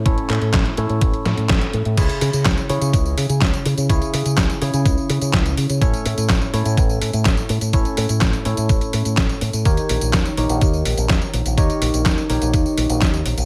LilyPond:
<<
  \new Staff \with { instrumentName = "Tine electric piano" } { \time 4/4 \key cis \minor \tempo 4 = 125 <a, cis' e' a' cis''>4. <a, cis' e' a' cis''>2~ <a, cis' e' a' cis''>8 | <cis cis' e' gis' cis''>4. <cis cis' e' gis' cis''>2~ <cis cis' e' gis' cis''>8 | <cis cis' e' gis' cis''>4. <cis cis' e' gis' cis''>2~ <cis cis' e' gis' cis''>8 | <a, cis' e' a' cis''>4. <a, cis' e' a' cis''>2~ <a, cis' e' a' cis''>8 |
<a, cis' e' a' cis''>4. <a, cis' e' a' cis''>2~ <a, cis' e' a' cis''>8 | <dis dis' g' ais' cis''>4. <dis dis' g' ais' cis''>2~ <dis dis' g' ais' cis''>8 | <dis dis' g' ais' cis''>4. <dis dis' g' ais' cis''>2~ <dis dis' g' ais' cis''>8 | }
  \new Staff \with { instrumentName = "Fingered electric bass" } { \clef bass \time 4/4 \key cis \minor a,,16 r16 a,16 a,16 a,,16 r16 a,16 a,16 a,,16 r16 a,16 a,16 a,,16 r16 a,16 a,16 | cis,16 r16 cis16 cis16 cis,16 r16 cis16 cis16 cis,8 cis16 cis16 cis,16 r16 cis16 cis16 | cis,16 r16 cis16 cis16 cis,16 r16 cis16 cis16 cis,16 r16 cis16 cis16 cis,8 cis16 cis16 | a,,16 r16 a,16 a,16 a,,16 r16 a,16 a,16 a,,8 a,16 a,16 a,,16 r16 a,16 a,16 |
a,,16 r16 a,16 a,16 a,,16 r16 a,16 a,16 a,,16 r16 a,16 a,16 a,,16 r16 a,16 a,16 | dis,16 r16 ais,,16 ais,,16 dis,16 r16 ais,,16 ais,,16 dis,8 ais,,16 ais,,16 dis,16 r16 ais,,16 ais,,16 | dis,16 r16 ais,,16 ais,,16 r8 ais,,16 ais,,16 dis,16 r16 ais,,16 ais,,16 r8 ais,,16 ais,,16 | }
  \new DrumStaff \with { instrumentName = "Drums" } \drummode { \time 4/4 <hh bd>16 hh16 <hc hh>16 hh16 <hc hh bd sn>16 hh16 hh16 hh16 <hh bd>16 hh16 <hh sn>16 hh16 <hc hh bd sn>16 hh16 hh16 hh16 | <cymc hh bd tamb>16 <hh tamb>16 hho16 <hh tamb>16 <hc hh bd sn tamb>16 <hh tamb>16 hho16 <hh tamb>16 <hh bd tamb>16 tamb16 hho16 <hh tamb>16 <hc hh bd sn tamb>16 <hh tamb>16 hho16 <hh tamb>16 | <hh bd tamb>16 <hh tamb>16 hho16 <hh tamb>16 <hc hh bd sn tamb>16 <hh tamb>16 hho16 <hh tamb>16 <hh bd tamb>16 tamb16 hho16 <hh tamb>16 <hc hh bd sn tamb>16 <hh tamb>16 hho16 <hh tamb>16 | <hh bd tamb>16 <hh tamb>16 hho16 <hh tamb>16 <hc hh bd sn tamb>16 <hh tamb>16 hho16 <hh tamb>16 <hh bd tamb>16 tamb16 hho16 <hh tamb>16 <hc hh bd sn tamb>16 <hh tamb>16 hho16 <hh tamb>16 |
<hh bd tamb>16 <hh tamb>16 hho16 <hh tamb>16 <hc hh bd sn tamb>16 <hh tamb>16 hho16 <hh tamb>16 <hh bd tamb>16 <hh tamb>16 hho16 <hh tamb>16 <hc hh bd sn tamb>16 <hh tamb>16 hho16 <hh tamb>16 | <hh bd tamb>16 <hh tamb>16 hho16 <hh tamb>16 <hc hh bd sn tamb>16 <hh tamb>16 hho16 <hh tamb>16 <hh bd tamb>16 tamb16 hho16 <hh tamb>16 <hc hh bd sn tamb>16 <hh tamb>16 hho16 <hh tamb>16 | <hh bd tamb>16 <hh tamb>16 hho16 <hh tamb>16 <hc hh bd sn tamb>16 <hh tamb>16 hho16 <hh tamb>16 <hh bd tamb>16 tamb16 hho16 <hh tamb>16 <hc hh bd sn tamb>16 <hh tamb>16 hho16 <hh tamb>16 | }
>>